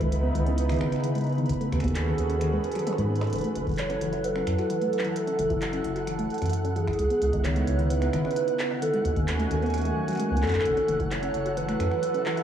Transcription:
Already playing: C#3 B3 D#4 E4 B4
0.00 C#2 D#3, kick, closed hi-hat
0.12 closed hi-hat
0.23 B3
0.35 C#2 D#3, closed hi-hat
0.46 C#4, closed hi-hat
0.58 closed hi-hat
0.69 D#3, finger snap, closed hi-hat
0.72 closed hi-hat
0.74 closed hi-hat
0.76 closed hi-hat
0.79 G#1, finger snap, closed hi-hat
0.92 D#4, finger snap, closed hi-hat
0.96 finger snap
1.00 D#3, finger snap, closed hi-hat
1.15 G#3, closed hi-hat
1.18 closed hi-hat
1.21 closed hi-hat
1.24 closed hi-hat
1.27 closed hi-hat
1.29 closed hi-hat
1.32 closed hi-hat
1.35 D#3, closed hi-hat
1.38 closed hi-hat
1.46 G#4 A4, kick, closed hi-hat
1.49 D#3 C#4 F#4, closed hi-hat
1.53 closed hi-hat
1.61 A3, closed hi-hat
1.72 D#2 D#3, finger snap, closed hi-hat
1.80 D#2 B3, finger snap, kick, closed hi-hat
1.84 finger snap, closed hi-hat
1.88 closed hi-hat
1.95 clap, closed hi-hat
2.07 D#3
2.18 D#2, closed hi-hat
2.30 C#4, closed hi-hat
2.41 D#3, finger snap, closed hi-hat
2.53 G#3
2.64 closed hi-hat
2.72 finger snap, closed hi-hat
2.75 F#3, closed hi-hat
2.79 closed hi-hat
2.87 closed hi-hat, high tom
2.93 snare
2.98 G#2 G#3, closed hi-hat
3.10 B3
3.16 closed hi-hat
3.21 D#4, finger snap, snare, closed hi-hat
3.24 closed hi-hat
3.27 closed hi-hat
3.30 E3 F#5, closed hi-hat
3.33 F#1 F#3 E4 A4, closed hi-hat
3.36 closed hi-hat
3.38 closed hi-hat
3.41 closed hi-hat
3.44 A3, closed hi-hat
3.56 F#1, closed hi-hat
3.67 F#1 E3, kick, closed hi-hat
3.69 closed hi-hat
3.72 closed hi-hat
3.74 closed hi-hat
3.76 C#5, clap, closed hi-hat
3.78 closed hi-hat
3.90 C#4, closed hi-hat
4.01 F#1 E3, closed hi-hat
4.13 E4, closed hi-hat
4.24 B4, closed hi-hat
4.36 C#4, finger snap
4.47 F#2, finger snap, closed hi-hat
4.59 F#4, finger snap, closed hi-hat
4.70 E3, closed hi-hat
4.81 A3, closed hi-hat
4.93 closed hi-hat
4.99 clap
5.04 E3, closed hi-hat
5.16 A4, closed hi-hat
5.27 C#4, closed hi-hat
5.39 F#1 E3, closed hi-hat
5.50 F#1 E4, kick, closed hi-hat
5.62 clap, closed hi-hat
5.73 C#4, closed hi-hat
5.84 F#1, closed hi-hat
5.96 F#4, closed hi-hat
6.07 E3, finger snap, closed hi-hat
6.19 A3, closed hi-hat
6.30 closed hi-hat
6.34 closed hi-hat
6.38 E3, finger snap, closed hi-hat
6.42 F#2, closed hi-hat
6.46 closed hi-hat
6.49 closed hi-hat
6.53 closed hi-hat
6.64 C#4, closed hi-hat
6.76 E3 G#4, closed hi-hat
6.87 E4, finger snap, kick
6.93 closed hi-hat
6.99 C#2 C#3 B3 D#4 E4, closed hi-hat
7.10 B3, closed hi-hat
7.22 C#2, closed hi-hat
7.33 C#2 D#4, kick, closed hi-hat
7.44 D#3 C#5, clap, closed hi-hat
7.56 G#3, closed hi-hat
7.67 C#2, closed hi-hat
7.79 D#3, closed hi-hat
7.90 B4, closed hi-hat
8.02 B3, finger snap, closed hi-hat
8.13 G#1 D#3, finger snap, closed hi-hat
8.25 C#4, finger snap
8.31 closed hi-hat
8.36 closed hi-hat
8.48 B3, closed hi-hat
8.59 clap, closed hi-hat
8.70 D#4
8.82 D#3 A3 C#4 F#4 A4 G#5, closed hi-hat
8.93 G#3, closed hi-hat
9.05 D#2, closed hi-hat
9.16 D#2 D#3, kick, closed hi-hat
9.28 clap, closed hi-hat
9.39 A3, closed hi-hat
9.51 D#2 D#3, closed hi-hat
9.62 B3, closed hi-hat
9.66 closed hi-hat
9.70 finger snap, closed hi-hat
9.74 closed hi-hat
9.78 closed hi-hat
9.81 A3, closed hi-hat
9.85 closed hi-hat
9.97 F#3
10.08 F#3, finger snap, closed hi-hat
10.10 finger snap, closed hi-hat
10.13 closed hi-hat
10.15 finger snap, closed hi-hat
10.17 G#3, closed hi-hat
10.20 closed hi-hat
10.31 C#2 B3
10.37 closed hi-hat
10.42 F#2 A4, clap, closed hi-hat
10.45 closed hi-hat
10.47 clap, closed hi-hat
10.49 closed hi-hat
10.52 kick, clap, closed hi-hat
10.54 kick, closed hi-hat
10.60 kick, clap
10.65 F#1 F#3 E4 A4, kick, closed hi-hat
10.69 kick
10.73 C#4, kick
10.77 closed hi-hat
10.88 F#1 E3, closed hi-hat
11.00 F#1 E4, kick, closed hi-hat
11.11 C#5, clap, closed hi-hat
11.23 C#4, closed hi-hat
11.34 F#1, closed hi-hat
11.46 F#4, closed hi-hat
11.57 E3 B4, closed hi-hat
11.69 A3, finger snap, closed hi-hat
11.80 F#2, finger snap, closed hi-hat
11.91 E3, finger snap
12.03 closed hi-hat
12.14 C#4, closed hi-hat
12.26 E3, clap
12.37 E4, closed hi-hat

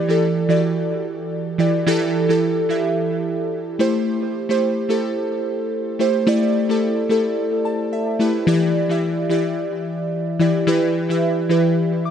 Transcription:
Already playing: E3 E4 G4 D5
0.09 E3 E4 G4 A4
0.49 E3 E4 F#4 D5
0.56 G4
1.58 E3 E4 G4 D5
1.86 E3 E4 G4 A4
2.29 E3 E4 G4 A4
2.69 E3 E4 G4 E5
3.79 A3 E4 G4 C5
4.49 A3 E4 G4 C5
4.89 A3 E4 G4 A4
5.99 A3 E4 G4 C5
6.27 A3 E4 G4 D5
6.69 A3 E4 G4 A4
7.09 A3 E4 G4 A4
7.65 A5
7.93 E5
8.19 A3 E4 G4 B4
8.47 E3 E4 G4 D5
8.89 E3 E4 G4 E5
9.29 E3 E4 G4 D5
10.39 E3 E4 G4 D5
10.67 E3 E4 G4 B4
11.09 E3 E4 G4 E5
11.49 E3 E4 G4 B4
12.05 D6

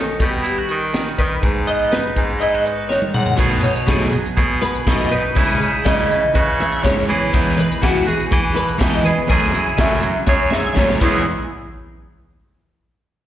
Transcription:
Already playing: D#3 C#4 D#4 A4
0.20 B2 G3 G4, kick, closed hi-hat
0.43 E4, closed hi-hat
0.58 F#4
0.69 D#3 D#4, closed hi-hat
0.93 D#3, snare, closed hi-hat
1.07 snare
1.18 D#3 B4, kick, closed hi-hat
1.42 G#2, kick, closed hi-hat
1.67 B3 D#5, closed hi-hat
1.92 D#4 B4, snare, closed hi-hat
2.16 G#2 G#3, kick, closed hi-hat
2.40 E4 D#5, closed hi-hat
2.54 F#4
2.65 D#4 B4, closed hi-hat
2.89 D#3 C#5, snare
3.02 high tom
3.14 G#2 F#5, mid tom
3.26 floor tom
3.37 B2 F#3 A3 D#4 G#4, kick, crash
3.63 D#4 C#5, muted overdriven electric guitar stroke, closed hi-hat
3.76 closed hi-hat
3.87 B2 F#3 A3 D#4 G#4, kick, snare, closed hi-hat
4.12 F#3, muted overdriven electric guitar stroke, closed hi-hat
4.25 closed hi-hat
4.37 B2 G#4, muted overdriven electric guitar stroke, kick, closed hi-hat
4.62 B4, muted overdriven electric guitar stroke, closed hi-hat
4.75 closed hi-hat
4.86 F#2 B2 F#3 A3 D#4 D#5, kick, snare, closed hi-hat
5.11 D#4 B4, muted overdriven electric guitar stroke, closed hi-hat
5.35 C#3 G#3 C#4 E4 G#4, kick, closed hi-hat
5.60 D#4, muted overdriven electric guitar stroke, closed hi-hat
5.85 C#3 G#3 C#4 E4 D#5, kick, snare, closed hi-hat
6.09 E3, muted overdriven electric guitar stroke, closed hi-hat
6.34 C#3 F#4 B4, muted overdriven electric guitar stroke, kick, closed hi-hat
6.60 E5, muted overdriven electric guitar stroke, closed hi-hat
6.72 closed hi-hat
6.83 G#2 C#3 G#3 C#4 E4 C#5, kick, snare, closed hi-hat
7.09 E2 E3 G#4, muted overdriven electric guitar stroke, closed hi-hat
7.33 E3 G#3 B3 D#4 E4, kick, closed hi-hat
7.58 B4, muted overdriven electric guitar stroke, closed hi-hat
7.72 closed hi-hat
7.81 E3 G#3 B3 E4 F#4, kick, snare, closed hi-hat
8.07 F#4 G#4, muted overdriven electric guitar stroke, closed hi-hat
8.20 closed hi-hat
8.31 E3, muted overdriven electric guitar stroke, kick, closed hi-hat
8.54 B2 B4, muted overdriven electric guitar stroke, closed hi-hat
8.68 closed hi-hat
8.78 E3 G#3 B3 D#4 E4 D#5, kick, snare, closed hi-hat
9.04 E2 G#4 B4, muted overdriven electric guitar stroke, snare, closed hi-hat
9.28 F#2 C#3 F#3 A3 C#4 G#4, kick, closed hi-hat
9.53 E4, muted overdriven electric guitar stroke, closed hi-hat
9.78 F#2 C#3 F#3 A3 C#4 E5, kick, snare, closed hi-hat
10.02 F#3, muted overdriven electric guitar stroke, closed hi-hat
10.27 F#2 G#4 C#5, muted overdriven electric guitar stroke, kick, snare
10.50 G#2 E5, muted overdriven electric guitar stroke, snare
10.74 F#2 G#2 C#3 F#3 A3 C#4 C#5, kick, snare
10.89 snare
11.00 E2 E3 G#3 B3 D#4 E4, kick, crash
11.05 G#4

